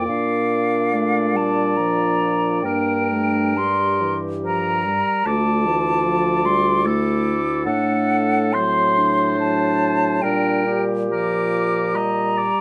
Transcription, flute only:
0.08 1.38 F5 medium
1.36 1.78 A5 medium
1.77 2.62 A#5 medium
2.62 3.58 G5 medium
3.57 4.18 C6 medium
4.45 5.27 A#5 medium
5.25 6.47 A5 medium
6.45 6.87 C6 medium
6.85 7.64 D6 medium
7.65 8.54 F#5 medium
8.53 9.39 C6 medium
9.40 10.23 A5 medium
10.22 10.83 G5 medium
11.12 11.97 D6 medium
11.95 12.61 A#5 medium

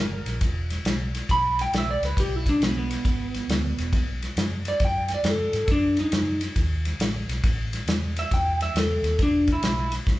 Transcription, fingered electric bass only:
0.00 0.20 G1 medium
0.25 0.38 A#1 medium
0.41 0.77 E1 medium
0.84 1.20 B1 medium
1.29 1.64 B1 medium
1.72 1.96 B1 medium
2.01 2.13 C#2 medium
2.17 2.52 B1 medium
2.60 2.96 B1 medium
3.05 3.40 G#1 medium
3.48 3.71 D2 medium
3.77 3.93 E1 medium
3.93 4.28 B1 medium
4.36 4.72 F#2 medium
4.80 5.15 F#2 medium
5.23 5.47 F#2 medium
5.53 5.65 G#2 medium
5.68 6.03 F#2 medium
6.12 6.47 F#2 medium
6.56 6.91 D#2 medium
6.99 7.23 A1 medium
7.27 7.40 B1 medium
7.44 7.79 A1 medium
7.87 8.22 E2 medium
8.31 8.67 E2 medium
8.74 8.98 E2 medium
9.03 9.15 D#2 medium
9.19 9.54 E1 medium
9.62 9.98 B1 medium
10.07 10.20 G#1 medium

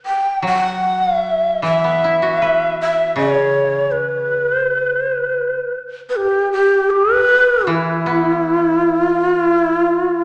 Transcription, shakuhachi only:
0.06 0.42 G5 medium
0.47 1.06 F#5 medium
1.06 1.20 F5 medium
1.20 1.61 E5 medium
1.64 2.75 E5 medium
2.81 3.16 E5 medium
3.17 3.93 C#5 medium
3.92 4.58 B4 medium
4.58 4.76 C5 medium
4.76 4.95 B4 medium
4.95 5.13 C5 medium
5.13 5.78 B4 medium
6.09 6.18 B4 medium
6.16 6.52 G4 medium
6.53 6.91 G4 medium
6.91 7.16 G4 medium
7.16 7.69 B4 medium
7.67 9.07 E4 medium
9.07 9.45 F4 medium
9.45 9.86 E4 medium
9.86 10.24 F4 medium

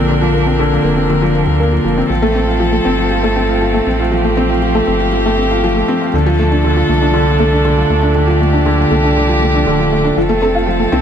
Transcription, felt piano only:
0.00 0.09 D3 medium
0.00 0.21 F3 loud
0.00 0.34 A#3 medium
0.00 0.47 C4 medium
0.09 0.20 D3 medium
0.21 0.33 F3 medium
0.34 0.46 A#3 medium
0.47 0.58 C4 medium
0.59 0.71 D3 medium
0.72 0.79 F3 medium
0.84 0.96 A#3 medium
0.97 1.04 C4 medium
1.10 1.21 D3 medium
1.22 1.29 F3 medium
1.35 1.42 A#3 medium
1.47 1.59 F3 medium
1.60 1.72 A#3 medium
1.73 1.83 F3 medium
1.85 1.97 F3 medium
1.98 2.09 C4 medium
2.10 2.22 F3 medium
2.22 2.34 A3 medium
2.35 2.47 C4 medium
2.47 2.59 F4 medium
2.60 2.72 F3 medium
2.72 2.80 A3 medium
2.85 2.97 C4 medium
2.98 3.05 F4 medium
3.11 3.23 F3 medium
3.24 3.31 A3 medium
3.36 3.43 C4 medium
3.49 3.56 F4 medium
3.61 3.73 F3 medium
3.74 3.86 A3 medium
3.87 3.98 C4 medium
3.99 4.11 F4 medium
4.12 4.24 F3 medium
4.24 4.31 A3 medium
4.37 4.49 C4 medium
4.50 4.57 F4 medium
4.62 4.74 F3 medium
4.75 4.82 A3 medium
4.87 4.94 C4 medium
5.00 5.07 F4 medium
5.12 5.24 F3 medium
5.26 5.37 A3 medium
5.38 5.50 C4 medium
5.51 5.63 F4 medium
5.64 5.75 F3 loud
5.76 5.83 A3 medium
5.88 6.00 C4 medium
6.01 6.08 F4 medium
6.14 6.26 D3 medium
6.26 6.33 F3 loud
6.39 6.46 A3 medium
6.51 6.58 D4 medium
6.64 6.76 D3 medium
6.77 6.88 F3 medium
6.89 7.01 A3 medium
7.01 7.13 D4 medium
7.14 7.26 D3 medium
7.27 7.34 F3 medium
7.40 7.51 A3 medium
7.52 7.59 D4 medium
7.65 7.77 D3 medium
7.78 7.85 F3 medium
7.90 7.97 A3 medium
8.02 8.10 D4 medium
8.15 8.27 D3 medium
8.28 8.40 F3 medium
8.40 8.52 A3 medium
8.53 8.65 D4 medium
8.66 8.78 D3 medium
8.79 8.85 F3 medium
8.91 9.03 A3 medium
9.04 9.11 D4 medium
9.17 9.28 D3 medium
9.29 9.36 F3 medium
9.42 9.49 A3 medium
9.54 9.61 D4 medium
9.67 9.78 D3 medium
9.79 9.91 F3 medium
9.92 10.04 A3 medium
10.04 10.16 D4 medium
10.17 10.29 F3 medium
10.29 10.41 A3 loud
10.42 10.54 C4 medium
10.54 10.66 F4 medium
10.67 10.79 F3 medium
10.80 10.87 A3 medium
10.92 11.02 C4 medium

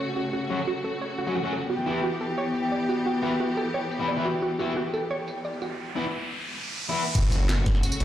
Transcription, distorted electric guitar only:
0.50 0.58 F#3 medium
0.50 0.58 C#4 medium
0.50 0.58 F#4 medium
1.27 1.35 F#3 medium
1.27 1.35 C#4 medium
1.27 1.35 F#4 medium
1.44 1.52 F#3 medium
1.44 1.52 C#4 medium
1.44 1.52 F#4 medium
1.86 1.99 E3 medium
1.86 1.99 B3 medium
1.86 1.99 E4 loud
3.23 3.31 E3 medium
3.23 3.31 B3 medium
3.23 3.31 E4 medium
3.99 4.08 E3 medium
3.99 4.08 B3 medium
3.99 4.08 E4 medium
4.17 4.25 E3 medium
4.17 4.25 B3 medium
4.17 4.25 E4 medium
4.59 4.72 E3 medium
4.59 4.72 B3 medium
4.59 4.72 E4 loud
5.96 6.04 E3 medium
5.96 6.04 B3 medium
5.96 6.04 E4 loud
6.89 7.02 E3 medium
6.89 7.02 B3 medium
6.89 7.02 E4 medium

